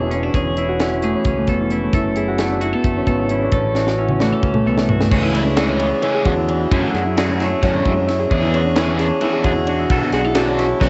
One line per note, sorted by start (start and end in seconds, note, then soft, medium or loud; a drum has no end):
0.00 0.28 E1 medium
0.00 0.33 E2 medium
0.00 0.34 B2 medium
0.00 1.03 E3 medium
0.00 1.48 B3 medium
0.00 0.12 C#4 medium
0.00 0.32 D4 medium
0.00 0.10 E4 medium
0.00 0.57 E4 medium
0.00 0.68 F#4 medium
0.00 0.31 G#4 medium
0.00 1.09 G#4 medium
0.11 0.23 C#4 medium
0.11 0.30 C#4 medium
0.11 closed hi-hat medium
0.23 0.41 D4 medium
0.23 0.34 E4 soft
0.34 1.13 E1 medium
0.34 1.47 E2 medium
0.34 0.91 C#4 medium
0.34 1.03 G#4 medium
0.34 kick medium
0.34 closed hi-hat medium
0.57 0.79 E4 medium
0.57 1.71 E4 medium
0.57 closed hi-hat medium
0.69 2.28 F#4 medium
0.80 1.26 C#4 medium
0.80 1.60 E4 medium
0.80 snare loud
0.80 closed hi-hat medium
0.91 1.14 C#4 medium
1.02 2.60 E3 medium
1.02 1.37 A3 medium
1.02 1.48 G#4 medium
1.02 closed hi-hat medium
1.15 1.70 C#4 medium
1.25 1.45 C#2 medium
1.25 2.39 C#4 medium
1.25 kick medium
1.25 closed hi-hat medium
1.37 1.82 A3 medium
1.47 1.87 F1 medium
1.47 1.93 E2 medium
1.47 2.73 B3 medium
1.47 1.94 A4 medium
1.47 kick medium
1.47 closed hi-hat medium
1.60 1.94 E4 medium
1.70 2.57 C#4 medium
1.70 1.97 E4 medium
1.70 closed hi-hat medium
1.83 2.22 A3 medium
1.93 2.73 F#1 medium
1.93 3.50 F#2 medium
1.93 2.39 E4 medium
1.93 2.61 A4 medium
1.93 kick loud
1.93 closed hi-hat medium
2.16 3.30 E4 medium
2.16 4.27 G#4 medium
2.16 closed hi-hat medium
2.28 3.87 F#4 medium
2.38 2.84 A3 medium
2.38 2.62 E4 medium
2.38 snare loud
2.38 closed hi-hat medium
2.51 3.03 D4 medium
2.61 3.50 F#3 medium
2.61 3.19 E4 medium
2.61 2.73 F#4 medium
2.61 closed hi-hat medium
2.73 3.07 B3 medium
2.73 3.06 A4 soft
2.84 3.04 F#1 medium
2.84 3.98 A3 medium
2.84 kick medium
2.84 closed hi-hat medium
2.97 3.30 C#4 medium
3.06 3.47 G#1 medium
3.06 3.49 C#3 medium
3.06 4.66 B3 medium
3.06 3.50 A4 medium
3.06 kick medium
3.06 closed hi-hat medium
3.19 3.75 E4 medium
3.29 3.48 C#4 medium
3.29 3.75 E4 medium
3.29 closed hi-hat medium
3.42 3.60 D4 medium
3.52 4.32 A1 medium
3.52 5.09 A2 medium
3.52 4.10 C#4 medium
3.52 4.21 A4 medium
3.52 kick loud
3.52 closed hi-hat medium
3.75 3.98 E4 medium
3.75 4.20 F#4 medium
3.75 snare medium
3.87 6.25 F#4 medium
3.87 snare medium
3.98 4.43 C#4 medium
3.98 4.77 E4 medium
4.08 4.32 C#4 medium
4.08 mid tom medium
4.20 4.65 E3 medium
4.20 4.54 A3 medium
4.20 4.32 F#4 medium
4.20 snare medium
4.32 4.89 C#4 medium
4.32 4.66 A4 soft
4.43 4.63 C#2 medium
4.43 5.10 C#4 medium
4.43 kick loud
4.54 5.00 A3 medium
4.54 mid tom medium
4.66 5.06 C2 medium
4.66 5.09 E3 medium
4.66 7.76 B3 medium
4.66 5.10 A4 medium
4.77 5.23 E4 medium
4.77 snare medium
4.89 5.33 C#4 medium
4.89 5.09 F#4 medium
4.89 floor tom medium
5.00 5.86 A3 medium
5.00 snare medium
5.11 5.91 C#2 medium
5.11 5.57 C#3 medium
5.11 5.41 E3 medium
5.11 5.42 G#3 medium
5.11 5.42 C#4 loud
5.11 5.23 F#4 medium
5.11 5.42 G#4 medium
5.11 kick loud
5.11 crash loud
5.23 5.57 E4 medium
5.23 5.57 G#4 medium
5.34 5.51 C#4 medium
5.34 6.73 E4 medium
5.34 snare soft
5.34 ride medium
5.45 5.74 D4 medium
5.56 6.49 E3 medium
5.56 5.87 E3 medium
5.56 5.87 G#3 medium
5.56 5.87 C#4 medium
5.56 6.01 E4 medium
5.56 5.69 F#4 medium
5.56 5.87 G#4 medium
5.56 snare loud
5.56 ride loud
5.68 6.55 C#4 medium
5.68 6.71 G#4 medium
5.79 6.73 B3 medium
5.79 6.14 G#4 medium
5.79 ride medium
6.02 6.26 C#3 medium
6.02 6.32 E3 medium
6.02 6.33 G#3 medium
6.02 6.33 C#4 medium
6.02 6.37 E4 medium
6.02 6.33 G#4 medium
6.02 ride loud
6.14 6.94 G#4 medium
6.25 6.65 E2 medium
6.25 6.49 D3 medium
6.25 6.83 F#4 medium
6.25 kick medium
6.25 ride medium
6.37 6.60 E4 medium
6.49 6.72 E3 medium
6.49 7.35 D4 medium
6.49 ride medium
6.60 7.05 E4 medium
6.71 6.81 F#2 loud
6.71 7.62 F#2 medium
6.71 7.01 F#3 medium
6.71 7.18 F#3 medium
6.71 7.01 A3 medium
6.71 7.40 A3 medium
6.71 7.01 C#4 loud
6.71 6.95 E4 medium
6.71 7.01 F#4 medium
6.71 7.19 G#4 medium
6.71 kick loud
6.71 ride loud
6.83 7.17 F#4 medium
6.94 7.53 F#2 medium
6.94 8.55 E4 medium
6.94 8.19 G#4 medium
6.94 snare soft
6.94 ride medium
7.05 7.39 E4 medium
7.17 7.46 F#3 medium
7.17 8.34 F#3 medium
7.17 7.47 A3 medium
7.17 7.47 C#4 medium
7.17 9.44 F#4 medium
7.17 7.47 F#4 medium
7.17 8.29 G#4 medium
7.17 snare loud
7.17 ride loud
7.29 7.62 C#4 medium
7.39 8.31 A3 medium
7.39 7.85 E4 medium
7.39 snare soft
7.39 ride medium
7.62 7.82 F#2 loud
7.62 7.86 A2 medium
7.62 7.92 F#3 medium
7.62 7.92 A3 medium
7.62 7.80 C#4 medium
7.62 7.92 C#4 medium
7.62 7.93 F#4 medium
7.62 kick loud
7.62 snare soft
7.62 ride loud
7.74 8.02 D4 medium
7.85 8.25 F#2 medium
7.85 8.08 G#2 medium
7.85 8.07 E4 medium
7.85 kick medium
7.85 ride medium
7.96 8.53 C#4 medium
8.07 8.31 F#2 medium
8.07 8.41 E4 medium
8.07 snare soft
8.07 ride medium
8.19 8.98 G#4 medium
8.31 9.10 E2 loud
8.31 9.90 E2 medium
8.31 8.60 E3 medium
8.31 8.61 B3 medium
8.31 8.61 D4 medium
8.31 8.76 G#4 medium
8.31 8.61 G#4 loud
8.31 kick loud
8.31 ride loud
8.42 8.75 E4 medium
8.53 8.70 C#4 medium
8.53 9.22 F#4 medium
8.53 ride medium
8.64 8.93 D4 medium
8.75 9.05 E3 medium
8.75 10.89 E3 medium
8.75 9.06 B3 medium
8.75 9.06 D4 medium
8.75 9.21 E4 medium
8.75 9.06 G#4 medium
8.75 9.44 G#4 medium
8.75 snare loud
8.75 ride medium
8.87 9.73 C#4 medium
8.99 9.88 D4 medium
8.99 9.32 G#4 medium
8.99 snare soft
8.99 ride medium
9.21 9.51 E3 medium
9.21 9.51 B3 medium
9.21 9.51 D4 medium
9.21 9.55 E4 medium
9.21 9.68 F#4 medium
9.21 9.52 G#4 medium
9.21 ride loud
9.33 10.13 G#4 medium
9.44 9.84 E2 medium
9.44 9.89 B2 medium
9.44 10.02 F#4 medium
9.44 9.88 G#4 medium
9.44 kick medium
9.44 ride medium
9.56 9.78 E4 medium
9.67 10.53 D4 medium
9.67 9.88 F#4 medium
9.67 ride medium
9.79 10.24 E4 medium
9.90 10.00 B1 medium
9.90 10.89 B2 medium
9.90 10.20 F#3 medium
9.90 10.20 B3 medium
9.90 10.20 D4 medium
9.90 10.20 F#4 medium
9.90 10.13 A4 medium
9.90 kick loud
9.90 ride loud
10.02 10.35 F#4 medium
10.12 10.72 B1 medium
10.12 10.25 F#4 medium
10.12 10.89 G#4 medium
10.12 snare soft
10.12 ride medium
10.24 10.57 E4 medium
10.24 10.35 A4 medium
10.35 10.65 F#3 medium
10.35 10.65 B3 medium
10.35 10.65 D4 medium
10.35 10.89 D4 medium
10.35 10.89 F#4 medium
10.35 10.66 F#4 medium
10.35 10.81 A4 medium
10.35 snare loud
10.35 ride loud
10.47 10.81 C#4 medium
10.58 10.89 E4 medium
10.58 snare soft
10.58 ride medium
10.81 10.89 B1 loud
10.81 10.89 F#3 medium
10.81 10.89 B3 medium
10.81 10.89 C#4 medium
10.81 10.89 D4 medium
10.81 10.89 F#4 medium
10.81 kick loud
10.81 snare medium